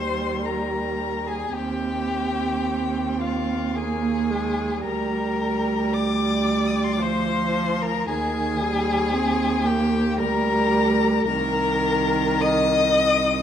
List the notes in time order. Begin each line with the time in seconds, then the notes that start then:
Already playing: D#2 G3 C5 C6
0.45 A#4 A#5
1.26 G#4 G#5
1.53 D#2 C4 G4 G5
3.20 F4 F5
3.75 A#3 G#4 G#5
4.31 G#3
4.83 D2 G3 A#4 A#5
5.93 D5 D6
6.67 D#6
6.75 D6
6.84 C6
6.93 D6
7.00 F3 C5 C6
7.82 A#4 A#5
8.08 D#2 D#3 G#4 G#5
8.61 G3
9.13 C4
9.65 A#3 G4 G5
10.18 D2 G3 A#4 A#5
11.26 C2 D#3 A#4 A#5
12.41 D#5 D#6